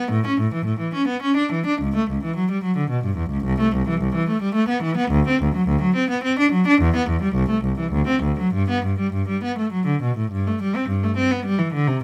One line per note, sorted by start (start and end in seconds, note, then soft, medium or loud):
0.11 0.25 A2 medium
0.26 0.39 C#4 medium
0.40 0.53 A2 soft
0.54 0.67 E3 medium
0.65 0.79 A2 medium
0.80 0.93 E3 soft
0.94 1.07 C#4 medium
1.07 1.21 B3 medium
1.22 1.35 C#4 medium
1.37 1.50 D4 medium
1.52 1.65 E3 medium
1.66 1.79 D4 medium
1.81 1.94 C#2 medium
1.96 2.08 A3 medium
2.10 2.23 C#2 soft
2.24 2.36 E3 medium
2.36 2.49 F#3 medium
2.51 2.64 G3 medium
2.64 2.77 F#3 medium
2.77 2.90 D3 soft
2.90 3.04 B2 medium
3.04 3.18 G2 medium
3.18 3.31 E2 medium
3.30 3.44 C#2 medium
3.44 3.59 C2 medium
3.60 3.73 A3 medium
3.75 3.88 C2 medium
3.88 4.01 E3 medium
4.01 4.15 C2 medium
4.15 4.29 E3 medium
4.29 4.43 A3 medium
4.42 4.56 G3 medium
4.55 4.69 A3 medium
4.68 4.83 B3 medium
4.83 4.98 E3 medium
4.97 5.12 B3 medium
5.11 5.26 D2 medium
5.28 5.42 C4 medium
5.42 5.56 D2 medium
5.55 5.69 F#3 medium
5.68 5.82 D2 medium
5.82 5.96 F#3 medium
5.96 6.10 C4 medium
6.10 6.24 B3 medium
6.24 6.38 C4 medium
6.39 6.53 D4 medium
6.52 6.66 F#3 medium
6.67 6.80 D4 medium
6.81 6.94 E2 medium
6.96 7.09 B3 medium
7.10 7.22 E2 medium
7.22 7.36 G3 medium
7.35 7.49 C2 medium
7.50 7.64 A3 medium
7.64 7.78 C2 medium
7.79 7.93 E3 medium
7.92 8.07 D2 medium
8.08 8.22 C4 medium
8.23 8.38 D2 medium
8.40 8.54 F#3 medium
8.54 8.69 G2 medium
8.70 8.84 B3 medium
8.85 8.99 G2 soft
8.99 9.13 G3 medium
9.13 9.28 G2 medium
9.29 9.43 G3 medium
9.44 9.58 B3 medium
9.58 9.72 A3 soft
9.73 9.87 F#3 medium
9.86 10.01 D3 soft
10.02 10.17 B2 medium
10.17 10.31 A2 medium
10.32 10.45 G2 medium
10.47 10.61 A3 medium
10.62 10.75 G3 medium
10.76 10.89 C4 medium
10.89 11.02 G2 medium
11.03 11.17 A3 medium
11.17 11.31 C4 medium
11.31 11.45 B3 medium
11.45 11.59 G3 medium
11.58 11.74 E3 medium
11.74 11.89 D3 medium
11.87 12.03 C3 medium